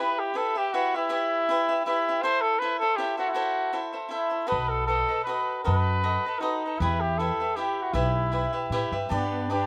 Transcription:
0.00 0.33 E4 medium
0.00 0.34 G4 medium
0.00 0.21 B4 medium
0.00 0.34 B4 medium
0.00 0.35 E5 medium
0.19 0.38 G4 medium
0.34 0.56 E4 soft
0.34 0.55 G4 soft
0.34 0.59 A4 medium
0.34 0.55 B4 medium
0.34 0.54 E5 soft
0.55 0.73 G4 soft
0.55 0.75 G4 medium
0.55 0.73 B4 soft
0.55 0.73 E5 soft
0.73 0.95 E4 medium
0.73 0.97 F#4 medium
0.73 0.94 G4 medium
0.73 0.95 B4 medium
0.73 0.93 E5 medium
0.94 1.85 E4 loud
0.94 1.09 G4 soft
0.94 1.09 B4 soft
0.94 1.09 E5 soft
1.09 1.48 E4 medium
1.09 1.48 G4 medium
1.09 1.49 B4 medium
1.09 1.50 E5 medium
1.49 1.70 E4 medium
1.49 1.68 G4 medium
1.49 1.68 B4 medium
1.49 1.67 E5 medium
1.68 1.85 G4 soft
1.68 1.86 B4 soft
1.68 1.86 E5 medium
1.85 2.24 E4 medium
1.85 2.07 E4 medium
1.85 2.07 G4 medium
1.85 2.07 B4 medium
1.85 2.07 E5 medium
2.08 2.23 G4 soft
2.08 2.23 B4 soft
2.08 2.24 E5 soft
2.22 2.61 E4 medium
2.22 2.62 A4 medium
2.22 2.42 C5 medium
2.22 2.62 C5 medium
2.22 2.62 E5 medium
2.41 2.61 A4 medium
2.59 2.82 E4 medium
2.59 2.82 A4 medium
2.59 2.78 B4 medium
2.63 2.81 C5 medium
2.63 2.80 E5 medium
2.79 2.98 A4 medium
2.79 2.97 C5 soft
2.79 2.98 E5 soft
2.83 2.97 A4 soft
2.96 3.19 E4 medium
2.96 3.18 G4 medium
2.96 3.18 A4 medium
2.96 3.17 C5 medium
2.96 3.16 E5 medium
3.17 3.29 F#4 medium
3.17 3.34 A4 soft
3.17 3.35 C5 soft
3.17 3.34 E5 soft
3.28 3.32 E4 medium
3.28 3.86 F#4 medium
3.34 3.72 E4 medium
3.34 3.72 A4 medium
3.34 3.72 C5 medium
3.34 3.73 E5 medium
3.73 3.95 E4 soft
3.73 3.92 A4 medium
3.73 3.92 C5 medium
3.73 3.91 E5 medium
3.92 4.09 A4 soft
3.92 4.09 C5 soft
3.92 4.10 E5 soft
4.09 4.32 E4 soft
4.09 4.50 E4 medium
4.09 4.30 A4 soft
4.09 4.30 C5 medium
4.09 4.28 E5 medium
4.29 4.47 A4 soft
4.29 4.47 C5 soft
4.29 4.47 E5 soft
4.47 4.86 F#4 medium
4.47 4.88 A4 medium
4.47 4.88 B4 medium
4.47 4.71 B4 medium
4.47 4.88 D#5 medium
4.52 5.02 B1 medium
4.69 4.86 A4 medium
4.87 5.10 F#4 soft
4.87 5.23 A4 medium
4.87 5.10 A4 soft
4.87 5.09 B4 soft
4.87 5.07 D#5 medium
5.08 5.26 A4 soft
5.08 5.28 B4 soft
5.08 5.27 D#5 soft
5.24 5.63 F#4 medium
5.24 5.64 A4 soft
5.24 5.61 B4 medium
5.29 5.65 B4 medium
5.29 5.64 D#5 medium
5.64 6.16 F#2 medium
5.64 6.02 F#4 medium
5.64 6.03 A4 medium
5.64 6.41 B4 medium
5.64 6.04 B4 medium
5.64 6.03 D#5 medium
6.03 6.25 F#4 medium
6.03 6.25 A4 medium
6.03 6.25 B4 medium
6.03 6.24 D#5 medium
6.25 6.41 A4 soft
6.25 6.41 B4 soft
6.25 6.41 D#5 soft
6.39 6.81 D#4 medium
6.39 6.62 F#4 soft
6.39 6.63 A4 medium
6.39 6.63 B4 medium
6.39 6.63 D#5 medium
6.66 6.81 A4 soft
6.66 6.81 B4 soft
6.66 6.81 D#5 soft
6.79 7.29 E2 medium
6.79 7.18 E4 medium
6.79 7.20 G4 medium
6.79 7.02 B4 medium
6.79 7.20 B4 medium
6.79 7.19 E5 medium
7.01 7.19 G4 medium
7.18 7.39 E4 soft
7.18 7.40 G4 soft
7.18 7.57 A4 medium
7.18 7.40 B4 medium
7.18 7.39 E5 medium
7.40 7.55 G4 soft
7.40 7.56 B4 soft
7.40 7.56 E5 soft
7.56 7.93 E4 medium
7.56 7.83 G4 medium
7.56 7.94 G4 medium
7.56 7.94 B4 medium
7.56 7.94 E5 medium
7.82 7.95 F#4 medium
7.93 8.44 B1 medium
7.93 8.92 E4 medium
7.93 8.30 E4 medium
7.93 8.32 G4 medium
7.93 8.33 B4 medium
7.93 8.31 E5 medium
8.32 8.53 E4 soft
8.32 8.53 G4 soft
8.32 8.52 B4 medium
8.32 8.51 E5 medium
8.53 8.71 G4 soft
8.53 8.71 B4 soft
8.53 8.71 E5 soft
8.70 8.90 A2 medium
8.70 8.93 E4 medium
8.70 8.92 G4 medium
8.70 8.92 B4 medium
8.74 8.91 E5 medium
8.92 9.08 G2 medium
8.92 9.09 G4 soft
8.92 9.10 B4 soft
8.92 9.10 E5 medium
9.09 9.61 G2 medium
9.09 9.46 B3 medium
9.09 9.48 D4 medium
9.09 9.54 D4 medium
9.09 9.50 G4 medium
9.09 9.50 B4 medium
9.09 9.50 D5 medium
9.50 9.66 D4 soft
9.50 9.66 D4 medium
9.50 9.66 G4 medium
9.50 9.66 B4 medium
9.50 9.66 D5 medium

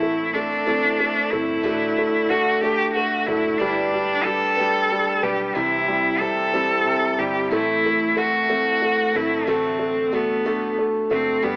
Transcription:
0.00 1.28 A1 medium
0.00 0.34 A2 medium
0.00 0.34 E3 medium
0.00 0.03 A3 medium
0.00 0.33 A3 medium
0.00 0.34 A3 medium
0.00 0.33 C4 medium
0.00 0.34 E4 medium
0.00 0.35 E4 loud
0.00 0.35 A4 medium
0.33 0.66 A3 medium
0.33 0.65 C4 medium
0.33 1.31 D4 medium
0.33 0.65 E4 medium
0.33 0.65 A4 medium
0.66 1.32 A2 medium
0.66 1.32 E3 medium
0.66 1.32 A3 medium
0.66 0.99 A3 medium
0.66 1.31 C4 medium
0.66 1.30 E4 medium
0.66 1.30 A4 medium
1.00 1.31 A3 soft
1.30 1.66 G1 medium
1.30 1.62 A3 soft
1.30 1.64 A3 medium
1.30 1.63 C4 soft
1.30 2.30 E4 loud
1.30 1.63 E4 medium
1.30 1.63 A4 medium
1.63 3.24 A1 medium
1.63 2.29 A2 medium
1.63 2.62 D3 medium
1.63 2.27 A3 medium
1.63 1.97 A3 medium
1.63 2.29 D4 medium
1.63 2.29 F#4 medium
1.63 2.30 A4 medium
1.98 2.29 A3 medium
2.29 2.61 A3 medium
2.29 2.62 A3 medium
2.29 2.61 D4 medium
2.29 2.62 F#4 medium
2.29 2.60 A4 medium
2.61 3.28 A2 soft
2.61 5.55 D3 medium
2.61 3.27 A3 medium
2.61 2.96 A3 medium
2.61 3.27 D4 medium
2.61 2.93 G4 loud
2.61 3.25 A4 medium
2.93 3.27 A3 medium
2.93 3.28 F#4 medium
3.26 3.58 F#1 medium
3.26 3.59 A3 soft
3.26 3.60 A3 medium
3.26 3.59 D4 soft
3.26 3.59 E4 medium
3.26 3.60 F#4 soft
3.26 3.60 A4 medium
3.58 5.19 G1 medium
3.58 4.24 G3 medium
3.58 3.93 G3 medium
3.58 3.70 D4 medium
3.58 4.23 D4 medium
3.58 4.25 G4 medium
3.58 4.24 B4 medium
3.68 4.25 D4 medium
3.68 3.73 E4 medium
3.94 4.25 G3 medium
4.24 4.56 G3 medium
4.24 4.59 G3 soft
4.24 4.56 D4 medium
4.24 4.56 G4 medium
4.24 5.24 A4 loud
4.24 4.55 B4 medium
4.56 5.55 G3 medium
4.56 4.91 G3 medium
4.56 5.23 D4 medium
4.56 5.23 G4 medium
4.56 5.21 B4 medium
4.92 5.22 G3 medium
5.22 5.54 B1 medium
5.22 5.55 G3 medium
5.22 5.55 D4 soft
5.22 5.56 G4 medium
5.22 5.56 G4 soft
5.22 5.56 B4 soft
5.55 7.15 C2 medium
5.55 6.21 C3 medium
5.55 6.20 C3 medium
5.55 6.54 E3 medium
5.55 6.18 G3 medium
5.55 6.20 C4 medium
5.55 6.21 E4 medium
5.55 6.20 E4 medium
5.55 6.21 C5 medium
5.88 6.52 G3 soft
6.19 6.85 C3 soft
6.19 6.53 G3 medium
6.19 6.53 C4 medium
6.19 6.52 E4 medium
6.19 7.20 A4 loud
6.19 6.52 C5 medium
6.53 7.19 C3 soft
6.53 7.50 E3 medium
6.53 7.18 G3 medium
6.53 7.18 G3 soft
6.53 7.18 C4 medium
6.53 7.18 E4 medium
6.53 7.17 C5 medium
6.86 7.50 C3 medium
7.18 7.50 G1 medium
7.18 7.51 G3 soft
7.18 7.51 G3 medium
7.18 7.50 C4 soft
7.18 7.50 E4 soft
7.18 7.51 G4 medium
7.18 7.51 C5 soft
7.50 9.11 A1 medium
7.50 8.16 A2 medium
7.50 8.17 E3 medium
7.50 8.16 A3 medium
7.50 7.85 A3 medium
7.50 8.16 C4 medium
7.50 8.16 E4 medium
7.50 8.19 E4 loud
7.50 8.18 A4 medium
7.86 8.15 A3 medium
8.16 8.49 A3 medium
8.16 8.48 A3 medium
8.16 8.48 C4 medium
8.16 8.48 E4 medium
8.16 9.17 F#4 medium
8.16 8.48 A4 medium
8.49 9.15 A2 medium
8.49 9.15 E3 medium
8.49 8.81 A3 medium
8.49 9.15 A3 medium
8.49 9.13 C4 medium
8.49 9.13 E4 medium
8.49 9.13 A4 medium
8.82 9.15 A3 soft
9.14 9.46 G1 medium
9.14 9.46 A3 soft
9.14 9.47 A3 medium
9.14 9.47 C4 soft
9.14 9.47 E4 soft
9.14 9.49 E4 medium
9.14 9.47 A4 medium
9.47 11.07 A1 medium
9.47 10.12 A2 medium
9.47 10.46 D3 medium
9.47 10.10 A3 medium
9.47 9.78 A3 medium
9.47 10.16 C4 medium
9.47 10.12 D4 medium
9.47 10.12 F#4 medium
9.47 10.12 A4 medium
9.79 10.12 A3 medium
10.11 10.45 A3 medium
10.11 10.79 B3 medium
10.11 10.45 D4 medium
10.11 10.44 F#4 medium
10.11 10.44 A4 medium
10.45 11.11 A2 medium
10.45 11.56 D3 medium
10.45 11.10 A3 medium
10.45 10.77 A3 medium
10.45 11.10 D4 medium
10.45 11.09 F#4 medium
10.45 11.09 A4 medium
10.79 11.10 A3 medium
11.10 11.42 F#1 medium
11.10 11.43 A3 medium
11.10 11.42 A3 soft
11.10 11.45 C4 medium
11.10 11.41 D4 soft
11.10 11.43 F#4 soft
11.10 11.43 A4 soft
11.42 11.56 G1 medium
11.42 11.56 G3 medium
11.42 11.56 B3 loud
11.42 11.56 D4 medium
11.42 11.56 G4 medium
11.42 11.56 B4 medium

